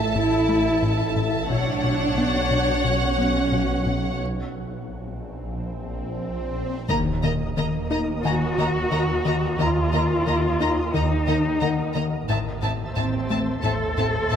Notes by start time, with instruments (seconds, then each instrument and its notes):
Already playing: double bass section A1, synth drone A1, cello section A3, synth texture E4 E5 A5, viola section A4, violin section E5 A5, felt piano A5
0.15 analog synth bass A2, cello section E4
0.49 analog synth bass A3
0.83 analog synth bass A2
1.16 analog synth bass A2
1.50 synth drone B1, double bass section B1, analog synth bass B2, cello section D4, synth texture F#4 C#5 F#5, viola section C#5, violin section C#5 F#5
1.84 analog synth bass B2
2.18 analog synth bass B3
2.51 analog synth bass B2
2.84 analog synth bass B2, cello section C#4
3.19 analog synth bass B3
3.52 analog synth bass B2
3.86 analog synth bass B2
4.19 synth drone A#1, swell
6.89 double bass section D#2, synth drone D#2, timpani D#3, analog synth bass D#3, viola section A#3, synth texture A#4 D#5, violin section D#5 A#5, impact
7.23 analog synth bass D#3, viola section A#3, violin section D#5 A#5
7.56 double bass section D#2, analog synth bass D#3, cello section A#3, viola section A#3, violin section D#5 A#5
7.91 viola section A#3, analog synth bass D#4, violin section D#5 A#5
8.24 double bass section D#2, analog synth bass D#3, viola section A#3, cello section F#4, violin section D#5 A#5, felt piano G#5
8.58 analog synth bass D#3, viola section A#3, violin section D#5 A#5
8.91 double bass section D#2, analog synth bass D#3, viola section A#3, violin section D#5 A#5
9.25 analog synth bass D#3, viola section A#3, violin section D#5 A#5
9.59 double bass section D#2, analog synth bass D#3, viola section A#3, cello section F4, violin section D#5 A#5
9.93 analog synth bass D#3, viola section A#3, violin section D#5 A#5
10.26 double bass section D#2, analog synth bass D#3, viola section A#3, violin section D#5 A#5
10.60 viola section A#3, analog synth bass D#4, violin section D#5 A#5
10.94 double bass section D#2, analog synth bass D#3, viola section A#3, cello section D#4, violin section D#5 A#5
11.28 analog synth bass D#3, viola section A#3, violin section D#5 A#5
11.61 double bass section D#2, analog synth bass D#3, viola section A#3, felt piano A#4 F#5, violin section D#5 A#5
11.95 analog synth bass D#3, viola section A#3, violin section D#5 A#5
12.28 double bass section A1, synth drone D#2, analog synth bass A2, viola section C4, synth texture C5 E5 A5, violin section E5 A5
12.62 analog synth bass A2, viola section C4, violin section E5 A5
12.96 double bass section A1, analog synth bass A2, cello section C4, viola section C4, violin section E5 A5
13.30 analog synth bass A3, viola section C4, violin section E5 A5
13.63 double bass section A1, analog synth bass A2, viola section C4, cello section A4, violin section E5 A5
13.98 analog synth bass A2, viola section C4, violin section E5 A5
14.30 double bass section A1, analog synth bass A2, viola section C4, violin section E5 A5